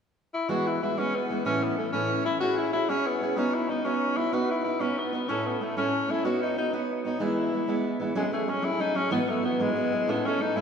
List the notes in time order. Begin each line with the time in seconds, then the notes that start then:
0.34 E4
0.49 E3 G#3 B3 F#4
0.67 E4
0.81 E3 G#3 B3 E4 F#4
0.97 E3 G#3 B3 C#4 F#4
1.16 B3
1.30 E3 G#3 B3 F#4
1.45 A2 E3 A3 C#4 E4
1.63 B3
1.77 E3 A3 C#4 E4
1.92 A2 E3 A3 C#4 E4
2.25 E3 A3 C#4 E4
2.40 C#4 E4 F#4 G#4 C#5
2.58 E4
2.73 C#4 E4 G#4 C#5
2.89 C#4 E4 G#4 C#5
3.07 B3
3.21 C#4 E4 G#4 C#5
3.36 B3 C#4 D#4 F#4 C#5
3.54 E4
3.69 B3 D#4 F#4 C#5
3.85 B3 C#4 D#4 F#4 C#5
4.17 B3 D#4 E4 F#4 C#5
4.32 B3 D#4 F#4 B4
4.50 E4
4.64 B3 D#4 E4 F#4 B4
4.80 B3 C#4 D#4 F#4 B4
4.99 B3
5.13 B3 D#4 F#4 B4
5.28 A2 A3 C#4 E4 A4
5.47 B3
5.61 A3 C#4 E4 A4
5.77 A2 A3 C#4 E4 A4
6.09 A3 C#4 E4 A4
6.25 B3 D#4 F#4 C#5
6.42 D#4
6.56 B3 D#4 F#4 C#5
6.73 B3 D#4 F#4 C#5
7.05 B3 D#4 F#4 C#5
7.20 E3 G#3 B3 E4
7.52 E3 G#3 B3 E4
7.67 E3 G#3 B3 E4
8.00 E3 G#3 B3 E4
8.15 F#3 G#3 A3 C#4 G#4
8.23 A3 G#4
8.32 F#3 A3 C#4 G#4
8.46 F#3 A3 C#4 G#4
8.62 F#3 A3 C#4 E4 G#4
8.70 A3 C#4 G#4
8.78 F#3 A3 C#4 D#4 G#4
8.95 F#3 A3 C#4 G#4
9.10 G#2 E3 F#3 B3 E4 F#4
9.17 F#3 B3 E4 F#4
9.27 F#3 A3 B3 E4 F#4
9.43 F#3 B3 E4 F#4
9.59 G#2 E3 F#3 G#3 B3 E4 F#4
9.67 F#3 B3 E4 F#4
9.75 F#3 B3 E4 F#4
9.92 F#3 B3 E4 F#4
10.08 A2 A3 B3 C#4 E4 A4
10.16 C#4 E4 A4
10.25 A3 C#4 E4 A4
10.40 A3 C#4 D#4 E4 A4
10.56 A2 A3 C#4 E4